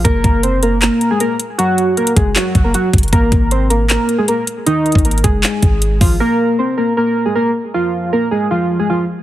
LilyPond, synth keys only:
\new Staff \with { instrumentName = "Synth keys" } { \time 4/4 \key ges \lydian \tempo 4 = 156 <bes bes'>4 <c' c''>8 <bes bes'>8 <bes bes'>8. <aes aes'>16 <bes bes'>8 r8 | <ges ges'>4 <bes bes'>8 <aes aes'>8 <ges ges'>8. <bes bes'>16 <ges ges'>8 r8 | <bes bes'>4 <c' c''>8 <bes bes'>8 <bes bes'>8. <aes aes'>16 <bes bes'>8 r8 | <ees ees'>4 <bes bes'>8 <aes aes'>2 <f f'>8 |
<bes bes'>4 <c' c''>8 <bes bes'>8 <bes bes'>8. <aes aes'>16 <bes bes'>8 r8 | <f f'>4 <bes bes'>8 <aes aes'>8 <f f'>8. <aes aes'>16 <f f'>8 r8 | }